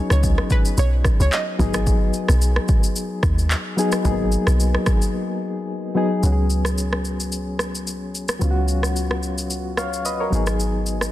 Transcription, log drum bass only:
0, 0, Header, 1, 2, 480
1, 0, Start_track
1, 0, Tempo, 545455
1, 1645, Time_signature, 4, 2, 24, 8
1, 9784, End_track
2, 0, Start_track
2, 0, Title_t, "Log drum bass"
2, 0, Program_c, 0, 39
2, 96, Note_on_c, 0, 37, 90
2, 358, Note_off_c, 0, 37, 0
2, 684, Note_on_c, 0, 35, 98
2, 964, Note_off_c, 0, 35, 0
2, 1056, Note_on_c, 0, 37, 95
2, 1137, Note_off_c, 0, 37, 0
2, 1403, Note_on_c, 0, 32, 112
2, 1864, Note_off_c, 0, 32, 0
2, 2016, Note_on_c, 0, 35, 91
2, 2278, Note_off_c, 0, 35, 0
2, 2844, Note_on_c, 0, 39, 92
2, 3124, Note_off_c, 0, 39, 0
2, 3565, Note_on_c, 0, 32, 113
2, 3845, Note_off_c, 0, 32, 0
2, 3937, Note_on_c, 0, 35, 91
2, 4198, Note_off_c, 0, 35, 0
2, 5485, Note_on_c, 0, 37, 81
2, 7369, Note_off_c, 0, 37, 0
2, 7405, Note_on_c, 0, 37, 86
2, 9050, Note_off_c, 0, 37, 0
2, 9085, Note_on_c, 0, 32, 82
2, 9784, Note_off_c, 0, 32, 0
2, 9784, End_track
0, 0, End_of_file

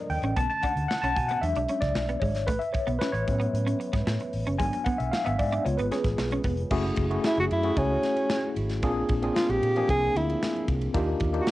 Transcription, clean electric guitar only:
0, 0, Header, 1, 3, 480
1, 0, Start_track
1, 0, Tempo, 528169
1, 338, Time_signature, 4, 2, 24, 8
1, 10460, End_track
2, 0, Start_track
2, 0, Title_t, "Clean electric guitar"
2, 0, Program_c, 0, 27
2, 215, Note_on_c, 0, 61, 74
2, 297, Note_off_c, 0, 61, 0
2, 334, Note_on_c, 0, 59, 84
2, 417, Note_off_c, 0, 59, 0
2, 580, Note_on_c, 0, 62, 76
2, 661, Note_off_c, 0, 62, 0
2, 942, Note_on_c, 0, 61, 78
2, 1022, Note_off_c, 0, 61, 0
2, 1189, Note_on_c, 0, 59, 74
2, 1267, Note_off_c, 0, 59, 0
2, 1422, Note_on_c, 0, 62, 71
2, 1502, Note_off_c, 0, 62, 0
2, 1539, Note_on_c, 0, 61, 69
2, 1621, Note_off_c, 0, 61, 0
2, 1900, Note_on_c, 0, 59, 73
2, 1981, Note_off_c, 0, 59, 0
2, 2019, Note_on_c, 0, 56, 78
2, 2100, Note_off_c, 0, 56, 0
2, 2254, Note_on_c, 0, 57, 90
2, 2337, Note_off_c, 0, 57, 0
2, 2609, Note_on_c, 0, 59, 71
2, 2694, Note_off_c, 0, 59, 0
2, 2739, Note_on_c, 0, 61, 74
2, 2821, Note_off_c, 0, 61, 0
2, 3089, Note_on_c, 0, 59, 81
2, 3174, Note_off_c, 0, 59, 0
2, 3332, Note_on_c, 0, 61, 73
2, 3416, Note_off_c, 0, 61, 0
2, 3573, Note_on_c, 0, 59, 73
2, 3657, Note_off_c, 0, 59, 0
2, 3701, Note_on_c, 0, 57, 82
2, 3782, Note_off_c, 0, 57, 0
2, 4060, Note_on_c, 0, 61, 71
2, 4142, Note_off_c, 0, 61, 0
2, 4171, Note_on_c, 0, 56, 79
2, 4256, Note_off_c, 0, 56, 0
2, 4417, Note_on_c, 0, 59, 86
2, 4500, Note_off_c, 0, 59, 0
2, 4779, Note_on_c, 0, 59, 78
2, 4861, Note_off_c, 0, 59, 0
2, 5021, Note_on_c, 0, 62, 88
2, 5102, Note_off_c, 0, 62, 0
2, 5265, Note_on_c, 0, 59, 68
2, 5345, Note_off_c, 0, 59, 0
2, 5382, Note_on_c, 0, 61, 73
2, 5463, Note_off_c, 0, 61, 0
2, 5748, Note_on_c, 0, 61, 79
2, 5827, Note_off_c, 0, 61, 0
2, 5861, Note_on_c, 0, 59, 74
2, 5943, Note_off_c, 0, 59, 0
2, 10460, End_track
3, 0, Start_track
3, 0, Title_t, "Muted clean electric guitar strokes"
3, 459, Note_on_c, 9, 29, 43
3, 550, Note_off_c, 9, 29, 0
3, 1064, Note_on_c, 9, 29, 45
3, 1155, Note_off_c, 9, 29, 0
3, 1306, Note_on_c, 9, 29, 45
3, 1397, Note_off_c, 9, 29, 0
3, 1780, Note_on_c, 9, 29, 45
3, 1871, Note_off_c, 9, 29, 0
3, 2489, Note_on_c, 9, 29, 47
3, 2580, Note_off_c, 9, 29, 0
3, 2857, Note_on_c, 9, 29, 46
3, 2948, Note_off_c, 9, 29, 0
3, 3454, Note_on_c, 9, 29, 41
3, 3544, Note_off_c, 9, 29, 0
3, 3825, Note_on_c, 9, 29, 43
3, 3916, Note_off_c, 9, 29, 0
3, 4301, Note_on_c, 9, 29, 42
3, 4392, Note_off_c, 9, 29, 0
3, 4904, Note_on_c, 9, 29, 47
3, 4994, Note_off_c, 9, 29, 0
3, 5140, Note_on_c, 9, 29, 45
3, 5231, Note_off_c, 9, 29, 0
3, 5624, Note_on_c, 9, 29, 50
3, 5715, Note_off_c, 9, 29, 0
3, 10460, End_track
0, 0, End_of_file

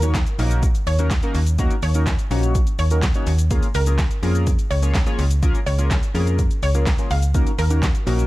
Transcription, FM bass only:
0, 0, Header, 1, 2, 480
1, 0, Start_track
1, 0, Key_signature, -6, "minor"
1, 0, Tempo, 480000
1, 1587, Time_signature, 4, 2, 24, 8
1, 8268, End_track
2, 0, Start_track
2, 0, Title_t, "FM bass"
2, 0, Program_c, 0, 39
2, 0, Note_on_c, 0, 39, 100
2, 252, Note_off_c, 0, 39, 0
2, 388, Note_on_c, 0, 34, 105
2, 732, Note_off_c, 0, 34, 0
2, 868, Note_on_c, 0, 39, 93
2, 1212, Note_off_c, 0, 39, 0
2, 1347, Note_on_c, 0, 39, 95
2, 1692, Note_off_c, 0, 39, 0
2, 1828, Note_on_c, 0, 39, 110
2, 2172, Note_off_c, 0, 39, 0
2, 2307, Note_on_c, 0, 34, 107
2, 2652, Note_off_c, 0, 34, 0
2, 2788, Note_on_c, 0, 39, 90
2, 3133, Note_off_c, 0, 39, 0
2, 3267, Note_on_c, 0, 39, 95
2, 3612, Note_off_c, 0, 39, 0
2, 3749, Note_on_c, 0, 37, 104
2, 4093, Note_off_c, 0, 37, 0
2, 4226, Note_on_c, 0, 41, 101
2, 4571, Note_off_c, 0, 41, 0
2, 4707, Note_on_c, 0, 37, 98
2, 5052, Note_off_c, 0, 37, 0
2, 5187, Note_on_c, 0, 37, 96
2, 5532, Note_off_c, 0, 37, 0
2, 5666, Note_on_c, 0, 37, 106
2, 6012, Note_off_c, 0, 37, 0
2, 6146, Note_on_c, 0, 41, 106
2, 6491, Note_off_c, 0, 41, 0
2, 6628, Note_on_c, 0, 37, 92
2, 6972, Note_off_c, 0, 37, 0
2, 7107, Note_on_c, 0, 37, 93
2, 7452, Note_off_c, 0, 37, 0
2, 7587, Note_on_c, 0, 39, 106
2, 7932, Note_off_c, 0, 39, 0
2, 8069, Note_on_c, 0, 34, 110
2, 8268, Note_off_c, 0, 34, 0
2, 8268, End_track
0, 0, End_of_file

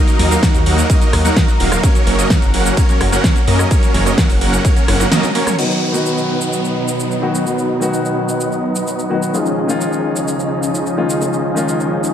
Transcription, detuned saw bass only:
0, 0, Header, 1, 2, 480
1, 0, Start_track
1, 0, Tempo, 468750
1, 1878, Time_signature, 4, 2, 24, 8
1, 12426, End_track
2, 0, Start_track
2, 0, Title_t, "Detuned saw bass"
2, 0, Program_c, 0, 39
2, 198, Note_on_c, 0, 39, 102
2, 368, Note_off_c, 0, 39, 0
2, 559, Note_on_c, 0, 39, 101
2, 644, Note_off_c, 0, 39, 0
2, 679, Note_on_c, 0, 39, 105
2, 849, Note_off_c, 0, 39, 0
2, 1158, Note_on_c, 0, 39, 89
2, 1328, Note_off_c, 0, 39, 0
2, 1638, Note_on_c, 0, 27, 98
2, 1808, Note_off_c, 0, 27, 0
2, 2118, Note_on_c, 0, 30, 100
2, 2288, Note_off_c, 0, 30, 0
2, 2478, Note_on_c, 0, 30, 98
2, 2563, Note_off_c, 0, 30, 0
2, 2598, Note_on_c, 0, 30, 103
2, 2768, Note_off_c, 0, 30, 0
2, 3078, Note_on_c, 0, 30, 92
2, 3248, Note_off_c, 0, 30, 0
2, 3559, Note_on_c, 0, 42, 100
2, 3729, Note_off_c, 0, 42, 0
2, 4039, Note_on_c, 0, 30, 100
2, 4209, Note_off_c, 0, 30, 0
2, 4399, Note_on_c, 0, 30, 99
2, 4483, Note_off_c, 0, 30, 0
2, 4519, Note_on_c, 0, 30, 102
2, 4689, Note_off_c, 0, 30, 0
2, 4999, Note_on_c, 0, 30, 99
2, 5169, Note_off_c, 0, 30, 0
2, 12426, End_track
0, 0, End_of_file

